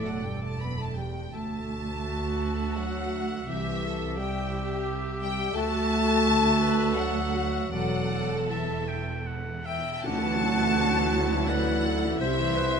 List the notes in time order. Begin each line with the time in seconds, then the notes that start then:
Already playing: E1 A2 A4 D5
0.04 F#3 F#5
0.23 G2 G3 G5
0.40 A3 A5
0.45 A5
0.59 F#2 B3 B5
0.77 A3 A5
0.82 A5
0.95 E2 G3 G5
1.33 D2 A3 F#4 E5 A5
2.07 F#4
2.77 F#3 F#5
3.48 C2 E3 G4 E5
3.84 A4
4.17 G3 G4 G5
5.21 G3 G5
5.54 D2 A3 F#4 E5 A5
6.25 F#4
6.60 B4
6.96 F#3 A4 F#5
7.35 F#4
7.72 E1 E2 F#3 A4 D5 F#5
8.49 E3 E5 A5
8.88 G5
9.27 F#5
9.64 E5 G5
10.02 D2 D3 F#3 E4 F#4 F#5 A5, tam-tam
10.21 E3
10.40 F#3
10.58 E3
10.77 D3
10.95 E3
11.13 F#3
11.31 E3
11.48 D3 B4 D5 F#5
11.69 E3
11.85 F#3 A4
12.05 E3
12.19 C2 C3 G3 C5 E5
12.40 E3
12.56 G3 B4
12.76 E3